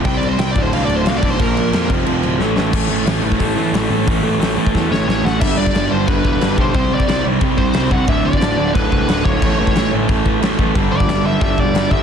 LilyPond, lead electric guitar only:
\new Staff \with { instrumentName = "Lead electric guitar" } { \time 4/4 \key a \dorian \tempo 4 = 180 \tuplet 3/2 { g''8 d''8 c''8 g''8 d''8 c''8 f''8 d''8 c''8 f''8 d''8 c''8 } | bes'4. r2 r8 | r1 | r2 r8 cis''4 fis''8 |
e''8 d''4 c''8 b'4. c''8~ | c''8 d''4 r4 c''4 fis''8 | e''8 d''4. b'4. cis''8~ | cis''8 cis''4 r2 r8 |
r8 d''4 e''8 e''8 d''4 e''8 | }